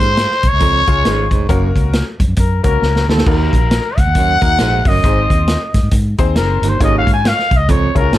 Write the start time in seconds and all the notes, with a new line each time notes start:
Already playing: G#3 C#4 F4 G#4 C5
0.00 G#2, closed hi-hat
0.17 snare, closed hi-hat
0.31 snare
0.43 B1, kick, closed hi-hat
0.48 C#5
0.53 C#2
0.60 F2, kick, closed hi-hat
0.87 C#2 G#3 C#4 F4 G#4, kick, closed hi-hat
1.05 G#1 G#2, snare, closed hi-hat
1.31 F1 G#2, kick, closed hi-hat
1.49 F#1 F#2 A#3 C#4 F#4 A#4, kick, closed hi-hat
1.75 C#2, kick, closed hi-hat
1.93 snare, closed hi-hat
2.20 F#2, kick, closed hi-hat
2.28 F#2
2.36 F#2 A#4, kick, closed hi-hat
2.63 C#2 A#3 C#4 F#4 A#4, kick, closed hi-hat
2.82 C#2, snare
2.96 snare
3.08 D2 D#2 A4, snare
3.18 snare
3.26 D#2 A#3 D#4 F#4 A#4, kick, crash
3.53 A#1, kick, closed hi-hat
3.71 snare, closed hi-hat
3.98 C#2 F#5, kick, closed hi-hat
4.06 D#2
4.15 F#2, kick, closed hi-hat
4.41 D#2 A#3 D#4 F#4 A#4, kick, closed hi-hat
4.59 A#1 G#2, snare, closed hi-hat
4.85 G1 F#2 D#5, kick, open hi-hat
5.04 G#1 G#2 C4 D#4 G#4 C5, kick, closed hi-hat
5.30 D#2, kick, closed hi-hat
5.48 snare, closed hi-hat
5.74 G#2, kick, snare, closed hi-hat
5.83 G#2
5.91 G#2, kick, closed hi-hat
6.18 D#2 C4 D#4 G#4 C5, kick, closed hi-hat
6.36 F#1 A#4, snare, closed hi-hat
6.62 G1 D#2, closed hi-hat
6.69 C5
6.80 G#1 D#2 C#4 F4 G#4 C#5 D#5, kick, closed hi-hat
6.98 F5
7.07 G#2, kick, closed hi-hat
7.13 G#5
7.25 F5, snare, closed hi-hat
7.39 snare
7.51 B1, kick, closed hi-hat
7.57 C#2 D#5
7.69 F2 C#5, kick, closed hi-hat
7.95 C#2 C#4 E4 G#4 A#4 C#5, kick, closed hi-hat
8.00 F4
8.13 G#1 G#2 A4, snare, closed hi-hat